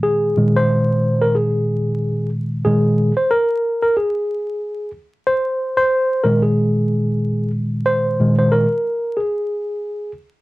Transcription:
X:1
M:4/4
L:1/16
Q:"Swing 16ths" 1/4=92
K:Cm
V:1 name="Tine electric piano"
A3 c4 B A6 z2 | A3 c B3 B A6 z2 | c3 c3 B A6- A z2 | c3 c B4 A6 z2 |]
V:2 name="Tine electric piano" clef=bass
[B,,E,A,]2 [B,,E,A,]12- [B,,E,A,]2 | [B,,E,A,]2 z12 z2 | z6 [B,,E,A,]8- [B,,E,A,]2- | [B,,E,A,]2 [B,,E,A,]2 z12 |]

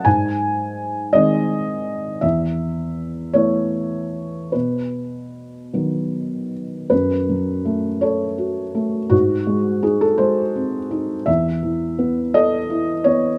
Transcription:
X:1
M:6/8
L:1/16
Q:3/8=55
K:F#dor
V:1 name="Felt piano"
g6 d6 | e6 c6 | B8- B2 z2 | B6 c6 |
F4 G A ^B6 | e6 d4 c2 |]
V:2 name="Felt piano" clef=bass
G,,6 [D,G,^B,]6 | E,,6 [E,A,B,]6 | B,,6 [D,F,B,]6 | F,,2 F,2 A,2 A2 F2 A,2 |
G,,2 G,2 D2 G,2 ^B,2 D2 | E,,2 E,2 B,2 A2 E2 B,2 |]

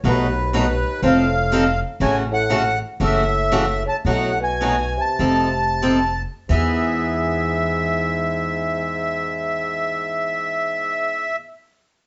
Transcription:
X:1
M:4/4
L:1/8
Q:"Swing" 1/4=99
K:E
V:1 name="Accordion"
B2 B2 =f3 z | g f2 z e3 a | f g2 a4 z | e8- |
e8 |]
V:2 name="Steel-string acoustic guitar"
[B,,F,A,DF] z [B,,F,A,DF] z [=F,=C_EA] z [F,CEA] z | [C,E,A,CF] z [C,E,A,CF] z [C,E,A,CF] z [C,E,A,CF] z | [B,,F,A,DF] z [B,,F,A,DF] z [=F,=C_EA] z [F,CEA] z | [E,B,G]8- |
[E,B,G]8 |]
V:3 name="Bassoon" clef=bass
D,,2 D,,2 A,,3 z | C, A,,2 z A,,3 C, | A,, B,,2 =C,4 z | G,,8- |
G,,8 |]
V:4 name="Upright bass" clef=bass
B,,,4 =F,,,4 | A,,,4 F,,,4 | B,,,4 =F,,,4 | E,,8- |
E,,8 |]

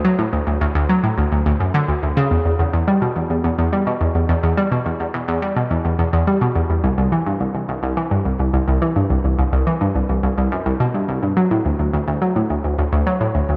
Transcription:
X:1
M:4/4
L:1/16
Q:1/4=106
K:Dlyd
V:1 name="Synth arpeggio sound" clef=bass
F, A,, D,, D,, D,, D,, F, A,, D,, D,, D,, F,, D, D,, D,, C, | [K:Em] E,, E,, E,, E,, G, B,, E,, E,, E,, E,, G, B,, E,, E,, E,, E,, | G, B,, E,, E,, E,, E,, G, B,, E,, E,, E,, E,, G, B,, E,, E,, | C,, C,, E, G,, C,, C,, C,, C,, E, G,, C,, C,, C,, C,, E, G,, |
C,, C,, C,, C,, E, G,, C,, C,, C,, C,, F,, C,, B,, G,, C,, G,, | F, A,, D,, D,, D,, D,, F, A,, D,, D,, D,, D,, F, A,, D,, D,, |]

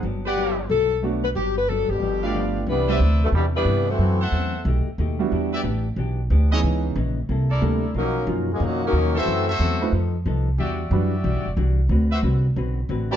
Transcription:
X:1
M:4/4
L:1/8
Q:"Swing" 1/4=182
K:G
V:1 name="Trumpet section"
z [GBdf]3 z4 | z4 z [GBd=f]3 | z [Bcde]3 z4 | z [Acef]3 z4 |
z [GBde] z4 z [EB^c_e] | z4 z [EA_Bd]3 | z6 z [FAce]- | [FAce] [FAce]3 z4 |
[FGde]4- [FGde] z3 | z [FBce] z4 z [GBda] |]
V:2 name="Saxophone section"
z G2 z A2 z B | G B A G4 z | [G,DEB]2 z [F,B,DA] [E,B,DG] [G,DEB]2 [A,EFc]- | [A,EFc] z6 z |
z8 | z8 | [F,^C^D^A]2 z [^E,^A,C_A] [^D,^A,CF] [F,CD^A]2 [=A,=EF=c]- | [A,EFc] z6 z |
z8 | z8 |]
V:3 name="Upright piano"
z6 [A,B,DF] z | z4 z [A,B,D=F]3 | z [G,B,CDE] z6 | z6 z [G,B,DEF]- |
[G,B,DEF]2 z4 z [E,B,^C_E_A]- | [E,B,^C_E_A]2 z4 [G,_B,D=E=A] z | z2 [F,^C^D^E^A] z4 z | z3 [A,C_E=FB] z4 |
z2 [G,DEFB] z4 z | z6 z [A,DFGB] |]
V:4 name="Hollow-body jazz guitar"
[G,,F,B,D] z [G,,F,B,D] z [G,,F,B,D] z [G,,F,B,D] z | [G,,F,B,D] z [G,,F,B,D] z [G,,=F,B,D] z [G,,F,B,D] z | [C,E,B,D] z [C,E,B,D] z [C,E,B,D] z [C,E,B,D] z | [F,,E,A,C] z [F,,E,A,C] z [B,,A,^DG] z [B,,A,DG] z |
[E,B,DG] z [E,B,DG] z [E,B,DG] z [E,B,DG] z | [^C,E,B,^D] z [C,E,B,D] z [=C,_B,EA] z [C,B,EA] z | [B,,^E,^A,^D] z [B,,E,A,D] z [B,,E,A,D] z [B,,E,A,D] z | [F,,E,A,C] z [F,,E,A,C] z [=F,B,_EA] z [F,B,EA] z |
[E,G,DF] z [E,G,DF] z [E,G,DF] z [E,G,DF] z | [D,CFB] z [D,CFB] z [D,CFB] z [D,CFB] z |]
V:5 name="Trombone section" clef=bass
z8 | z3 [B,,D,G,]4 z | [E,G,B,]2 z A, [B,,E,G,] [E,G,B,]2 [E,A,C]- | [E,A,C] z6 z |
z8 | z8 | [^D,F,^A,]2 z _A, [^A,,D,F,] [D,F,^A,]2 [E,=A,C]- | [E,A,C] z6 z |
z8 | z8 |]
V:6 name="Upright bass" clef=bass
G,,,4 B,,,4 | G,,,3 _A,,, G,,,4 | C,,2 D,,2 E,,2 G,,2 | F,,2 E,,2 B,,, z ^D,,2 |
E,,2 A,,,2 B,,,2 D,,2 | ^C,,2 _B,,,2 =C,,2 D,,2 | B,,,2 F,,2 ^E,,2 ^D,,2 | F,,2 E,,2 =F,,2 C,,2 |
E,,2 F,,2 (3B,,, G,,, E,,, C,,2 | D,,2 C,,2 B,,,2 A,,,2 |]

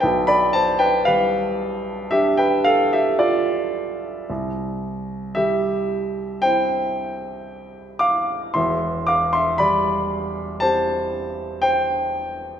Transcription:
X:1
M:4/4
L:1/16
Q:1/4=57
K:C
V:1 name="Grand piano"
[Bg] [db] [ca] [Bg] [Bf]4 [Ge] [Bg] [Af] [Ge] [Fd]4 | z4 [Ge]4 [cg]6 [fd']2 | [ec']2 [fd'] [ec'] [db]4 [ca]4 [cg]4 |]
V:2 name="Grand piano" clef=bass
B,,,4 G,4 D8 | C,,4 G,4 [CE]8 | [E,,,E,,]4 G,4 [CG]8 |]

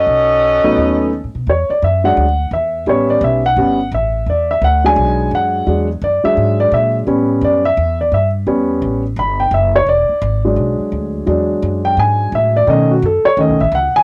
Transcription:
X:1
M:4/4
L:1/8
Q:"Swing" 1/4=171
K:Emix
V:1 name="Saxophone section"
[CFA^d]6- [CFAd] z | z8 | z8 | z8 |
z8 | z8 | z8 | z8 |
z8 | z8 |]
V:2 name="Upright piano"
z3 [F,A,B,C^D]3 z2 | c d e f3 e2 | c d e f3 e2 | d e f g3 f2- |
f z d e2 d e z | z2 d e2 d e z | z4 b =g e c | d3 z4 z |
z3 =g ^g2 e d | ^d F A c d e f g |]
V:3 name="Upright piano" clef=bass
z8 | z3 [F,G,D] z4 | [=G,B,C]3 z [G,B,C] z3 | z3 [F,G,D]4- [F,G,D] |
[F,G,D] z2 [F,G,D]4- [F,G,D] | [=G,B,C]3 z4 z | [=G,B,C]3 z4 z | z3 [F,G,D]4- [F,G,D] |
[F,G,D]8 | [^D,A,C] z3 [D,A,C] z3 |]
V:4 name="Upright bass" clef=bass
B,,,3 A,,, ^D,,2- (3D,, A,, B,, | E,, z F,,2 D,,2 E,,2 | A,,,2 B,,,2 =G,,,2 A,,,2 | E,,2 D,,2 B,,,2 F,,2 |
E,,2 F,, z G,,2 ^A,,2 | A,,2 F,,2 E,,2 =G,,2 | E,,2 A,,,2 =G,,,2 F,,,2 | E,,, z G,,,2 B,,, z D,,2 |
E,,2 F,,2 G,,2 A,,2 | B,,2 F,, z (3^D,, B,,, A,,, C,, z |]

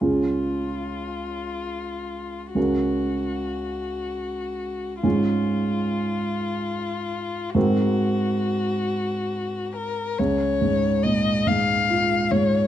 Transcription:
X:1
M:6/8
L:1/8
Q:3/8=47
K:Db
V:1 name="Violin"
F6 | G6 | F6 | G4- G B |
d2 e f2 d |]
V:2 name="Grand piano"
[D,,DFA]6 | [D,,DGB]6 | [A,,DFA]6 | [A,,CGB]6 |
D,, A,, B,, A,, F A,, |]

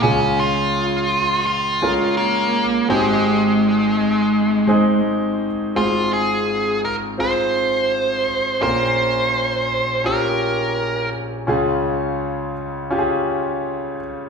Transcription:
X:1
M:4/4
L:1/8
Q:1/4=84
K:Ab
V:1 name="Lead electric guitar"
D F3 F2 B,2 | A,6 z2 | F A2 B c4 | c4 B3 z |
z8 |]
V:2 name="Grand piano"
[A,DFA]3 z2 [A,DFB]2 z | [A,CEG]3 z2 [A,CEA]2 z | [CFA]3 z [CFA]3 z | [DFB]3 z [DFG]3 z |
[DFA]3 z [DFGA]3 z |]
V:3 name="Grand piano" clef=bass
[D,,D,]8 | [A,,,A,,]8 | [A,,,A,,]8 | [B,,,B,,]8 |
[D,,D,]8 |]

